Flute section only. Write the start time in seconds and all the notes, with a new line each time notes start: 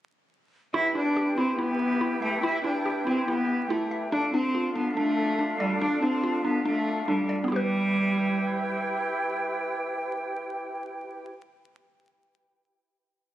0.74 E4 G4 B4 G5
4.12 D4 F4 A4 F5
7.50 E4 G4 B4 G5